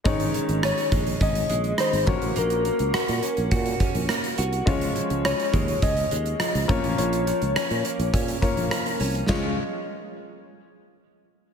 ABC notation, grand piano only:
X:1
M:4/4
L:1/8
Q:1/4=104
K:Db
V:1 name="Grand piano"
[A,DEd]6- [A,DEd] [B,DGd]- | [B,DGd]6- [B,DGd] z | [A,DFd]6- [A,DFd] [B,DFd]- | [B,DFd]4- [B,DFd] [B,DFd]3 |
[A,DFd] z6 z |]